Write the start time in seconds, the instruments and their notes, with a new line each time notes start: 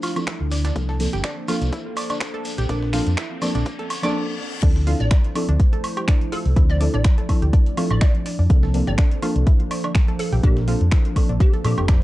Already playing: ambient pad F3 A3 D4 E4 C5, riser
0.03 synth arpeggio sound F4, closed hi-hat, open hi-hat, high woodblock, shekere
0.15 synth stab F3 C4 D4 E4 A4, closed hi-hat, high woodblock, shekere
0.27 synth arpeggio sound E4, finger snap, kick, snare, closed hi-hat
0.41 fingered electric bass D2
0.51 synth arpeggio sound D5, snare, closed hi-hat, open hi-hat, shekere
0.65 synth arpeggio sound D4, snare, closed hi-hat, shekere
0.75 fingered electric bass C2, synth stab F3 A#3 C4 D4 A4, ambient pad A#3 A4 C5, kick, closed hi-hat, shekere
0.89 synth arpeggio sound A4, snare
0.99 synth stab F3 A#3 C4 D4 A4, closed hi-hat, open hi-hat, shekere
1.13 fingered electric bass G1, synth arpeggio sound G4, closed hi-hat, shekere
1.24 synth arpeggio sound D4, finger snap, kick, snare, closed hi-hat, shekere
1.48 synth stab F3 A#3 C4 D4 A4, synth arpeggio sound F4, closed hi-hat, open hi-hat, high woodblock, shekere
1.61 fingered electric bass C2, closed hi-hat, shekere
1.72 synth arpeggio sound E4, kick, closed hi-hat, shekere
1.97 synth arpeggio sound D5, closed hi-hat, open hi-hat, high woodblock, shekere
2.10 synth arpeggio sound D4, closed hi-hat, high woodblock, shekere
2.20 finger snap, kick, snare, closed hi-hat, shekere
2.34 synth arpeggio sound A4
2.45 closed hi-hat, open hi-hat, shekere
2.58 fingered electric bass A#1, synth arpeggio sound G4, closed hi-hat, shekere
2.69 fingered electric bass A#1, synth stab F3 A#3 C4 D4 A#4, synth arpeggio sound D4, kick, closed hi-hat, shekere
2.82 snare
2.93 synth stab F3 A#3 C4 D4 A4, synth arpeggio sound F4, finger snap, closed hi-hat, open hi-hat, shekere
3.06 fingered electric bass F2, closed hi-hat, shekere
3.17 synth arpeggio sound E4, finger snap, kick, snare, closed hi-hat, shekere
3.41 synth stab F3 A#3 C4 D4 A4, synth arpeggio sound D5, closed hi-hat, open hi-hat, high woodblock, shekere
3.55 fingered electric bass A#1, synth arpeggio sound D4, closed hi-hat, shekere
3.65 kick, closed hi-hat, reverse cymbal, shekere
3.79 synth arpeggio sound A4, closed hi-hat
3.90 closed hi-hat, open hi-hat, high woodblock, shekere
4.02 synth stab F3 A#3 C4 D4 A4, synth arpeggio sound D5, closed hi-hat, high woodblock, shekere
4.62 fingered electric bass D2, synth stab F3 C4 D4 E4 A4, ambient pad F3 A3 D4 E4 C5, synth arpeggio sound D4, kick, closed hi-hat, crash
4.76 snare
4.87 synth stab F3 C4 D4 E4 A4, synth arpeggio sound F4, closed hi-hat, open hi-hat
5.00 fingered electric bass A1, synth pluck D5, closed hi-hat
5.11 synth arpeggio sound E4, finger snap, kick, snare, closed hi-hat
5.24 closed hi-hat
5.35 synth stab F3 C4 D4 E4 A4, synth arpeggio sound D5, closed hi-hat, open hi-hat, high woodblock
5.49 fingered electric bass D2, synth arpeggio sound D4, closed hi-hat
5.60 kick, closed hi-hat
5.73 synth arpeggio sound A4, closed hi-hat
5.84 closed hi-hat, open hi-hat, high woodblock
5.97 synth arpeggio sound G4, closed hi-hat, high woodblock
6.08 synth arpeggio sound D4, finger snap, kick, snare, closed hi-hat
6.21 closed hi-hat
6.32 synth arpeggio sound F4, synth pluck A4, closed hi-hat, open hi-hat
6.45 fingered electric bass C2, closed hi-hat
6.56 fingered electric bass D2, synth stab F3 C4 D4 E4 C5, synth arpeggio sound E4, ambient pad D5, kick, closed hi-hat
6.70 synth pluck D5, snare
6.80 synth stab F3 C4 D4 E4 A4, synth arpeggio sound D5, closed hi-hat, open hi-hat
6.94 fingered electric bass A1, synth arpeggio sound D4, synth pluck D5, closed hi-hat
7.04 finger snap, kick, snare, closed hi-hat
7.18 synth arpeggio sound A4, closed hi-hat
7.28 synth stab F3 C4 D4 E4 A4, kick, closed hi-hat, open hi-hat, high woodblock
7.42 fingered electric bass D2, synth arpeggio sound G4, closed hi-hat
7.53 synth arpeggio sound D4, kick, closed hi-hat
7.66 closed hi-hat
7.77 synth stab F3 C4 D4 E4 A4, synth arpeggio sound F4, closed hi-hat, open hi-hat, high woodblock
7.91 fingered electric bass A1, synth pluck D5, closed hi-hat, high woodblock
8.01 synth arpeggio sound E4, synth pluck D5, finger snap, kick, snare, closed hi-hat
8.15 closed hi-hat
8.26 synth arpeggio sound D5, snare, closed hi-hat, open hi-hat
8.39 fingered electric bass F2, synth arpeggio sound D4
8.49 fingered electric bass C2, synth stab F3 A#3 C4 D4 A4, ambient pad A#3 A4 C5, kick, closed hi-hat
8.63 synth arpeggio sound A4, snare
8.74 synth stab F3 A#3 C4 D4 A4, closed hi-hat, open hi-hat
8.87 fingered electric bass G1, synth arpeggio sound G4, synth pluck D5, closed hi-hat
8.98 synth arpeggio sound D4, finger snap, kick, snare, closed hi-hat
9.11 closed hi-hat
9.22 synth stab F3 A#3 C4 D4 A4, synth arpeggio sound F4, closed hi-hat, open hi-hat, high woodblock
9.36 fingered electric bass C2, closed hi-hat
9.47 synth arpeggio sound E4, kick, closed hi-hat
9.60 closed hi-hat
9.71 synth arpeggio sound D5, closed hi-hat, open hi-hat, high woodblock
9.84 synth arpeggio sound D4, closed hi-hat, high woodblock
9.95 finger snap, kick, snare, closed hi-hat
10.08 synth arpeggio sound A4, closed hi-hat
10.19 synth pluck A4, closed hi-hat, open hi-hat
10.32 fingered electric bass A#1, synth arpeggio sound G4, closed hi-hat
10.43 fingered electric bass A#1, synth stab F3 A#3 C4 D4 A#4, synth arpeggio sound D4, synth pluck G4, kick, closed hi-hat
10.57 snare, closed hi-hat
10.67 synth stab F3 A#3 C4 D4 A4, synth arpeggio sound F4, closed hi-hat, open hi-hat
10.81 fingered electric bass F2, closed hi-hat
10.91 synth arpeggio sound E4, finger snap, kick, snare, closed hi-hat
11.05 closed hi-hat
11.16 synth stab F3 A#3 C4 D4 A4, synth arpeggio sound D5, kick, closed hi-hat, open hi-hat, high woodblock
11.29 fingered electric bass A#1, synth arpeggio sound D4, closed hi-hat
11.40 synth pluck G4, kick, closed hi-hat
11.53 synth arpeggio sound A4, closed hi-hat
11.64 fingered electric bass A#2, synth stab F3 A#3 C4 D4 A4, synth pluck G4, closed hi-hat, open hi-hat, high woodblock
11.78 fingered electric bass F1, synth arpeggio sound G4, closed hi-hat, high woodblock
11.88 synth arpeggio sound D4, finger snap, kick, snare, closed hi-hat